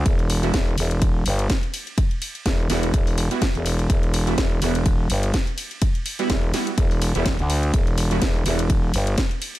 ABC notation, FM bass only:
X:1
M:4/4
L:1/16
Q:"Swing 16ths" 1/4=125
K:Em
V:1 name="FM bass" clef=bass
E,,,4 E,,,2 E,,,4 G,,,2 z4 | z4 E,,,2 E,,,2 E,,,3 z2 E,,,3 | E,,,4 E,,,2 E,,,4 G,,,2 z4 | z4 E,,,2 z2 E,,,3 E,,,2 D,,3 |
E,,,4 E,,,2 E,,,4 G,,,2 z4 |]